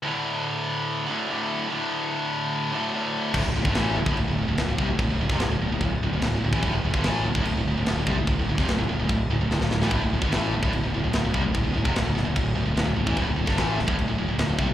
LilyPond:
<<
  \new Staff \with { instrumentName = "Distorted electric guitar" } { \clef bass \time 4/4 \key c \dorian \tempo 4 = 146 <d, a, d>2~ <d, a, d>8 <d, a, d>8 <d, a, d>4 | <d, a, d>2~ <d, a, d>8 <d, a, d>8 <d, a, d>4 | <d, a,>16 <d, a,>16 <d, a,>16 <g, d>16 <a, e a>8 <d, a,>16 <d, a,>16 <d, a,>16 <d, a,>16 <d, a,>16 <d, a,>16 <d, a,>16 <d, a,>16 <c g>16 <d, a,>16 | <d, a,>16 <d, a,>16 <d, a,>16 <f, c>16 <d, a,>16 <d, a,>16 <d, a,>16 <d, a,>16 <d, a,>8 <d, a,>16 <d, a,>16 <d, a,>16 <d, a,>16 <d, a,>16 <a, e>16 |
<d, a,>16 <d, a,>16 <d, a,>16 <g, d>16 <a, e a>8 <d, a,>16 <d, a,>16 <d, a,>16 <d, a,>16 <d, a,>16 <d, a,>16 <d, a,>16 <d, a,>16 <c g>16 <d, a,>16 | <d, a,>16 <d, a,>16 <d, a,>16 <f, c>16 <d, a,>16 <d, a,>16 <d, a,>16 <d, a,>16 <d, a,>8 <d, a,>16 <d, a,>16 <d, a,>16 <d, a,>16 <d, a,>16 <a, e>16 | <d, a,>16 <d, a,>16 <d, a,>16 <g, d>16 <a, e a>8 <d, a,>16 <d, a,>16 <d, a,>16 <d, a,>16 <d, a,>16 <d, a,>16 <d, a,>16 <d, a,>16 <c g>16 <d, a,>16 | <d, a,>16 <d, a,>16 <d, a,>16 <f, c>16 <d, a,>16 <d, a,>16 <d, a,>16 <d, a,>16 <d, a,>8 <d, a,>16 <d, a,>16 <d, a,>16 <d, a,>16 <d, a,>16 <a, e>16 |
<d, a,>16 <d, a,>16 <d, a,>16 <g, d>16 <a, e a>8 <d, a,>16 <d, a,>16 <d, a,>16 <d, a,>16 <d, a,>16 <d, a,>16 <d, a,>16 <d, a,>16 <c g>16 <d, a,>16 | }
  \new Staff \with { instrumentName = "Fingered electric bass" } { \clef bass \time 4/4 \key c \dorian r1 | r1 | d,,16 d,,16 d,,16 g,,16 a,,8 d,,16 d,,16 d,,16 d,,16 d,,16 d,,16 d,,16 d,,16 c,16 d,,16 | d,,16 d,,16 d,,16 f,,16 d,,16 d,,16 d,,16 d,,16 d,,8 d,,16 d,,16 d,,16 d,,16 d,,16 a,,16 |
d,,16 d,,16 d,,16 g,,16 a,,8 d,,16 d,,16 d,,16 d,,16 d,,16 d,,16 d,,16 d,,16 c,16 d,,16 | d,,16 d,,16 d,,16 f,,16 d,,16 d,,16 d,,16 d,,16 d,,8 d,,16 d,,16 d,,16 d,,16 d,,16 a,,16 | d,,16 d,,16 d,,16 g,,16 a,,8 d,,16 d,,16 d,,16 d,,16 d,,16 d,,16 d,,16 d,,16 c,16 d,,16 | d,,16 d,,16 d,,16 f,,16 d,,16 d,,16 d,,16 d,,16 d,,8 d,,16 d,,16 d,,16 d,,16 d,,16 a,,16 |
d,,16 d,,16 d,,16 g,,16 a,,8 d,,16 d,,16 d,,16 d,,16 d,,16 d,,16 d,,16 d,,16 c,16 d,,16 | }
  \new DrumStaff \with { instrumentName = "Drums" } \drummode { \time 4/4 r4 r4 r4 r4 | r4 r4 r4 r4 | <cymc bd>8. bd16 <cymc sn>8. bd16 cymc4 <cymc sn>8 bd8 | <cymc bd>8. <bd sn>16 <cymc sn>4 <cymc bd>4 <cymc sn>8. bd16 |
<cymc bd>8. bd16 <cymc sn>8. bd16 cymc4 <cymc sn>8 bd8 | <cymc bd>8. <bd sn>16 <cymc sn>4 <cymc bd>4 sn16 sn16 sn16 sn16 | <cymc bd>8. bd16 <cymc sn>8. bd16 cymc4 <cymc sn>8 bd8 | <cymc bd>8. bd16 <cymc sn>8 sn8 <cymc bd>4 <cymc sn>8. bd16 |
<cymc bd>8. <bd sn>16 <cymc sn>8 sn16 bd16 cymc4 <cymc sn>8 bd8 | }
>>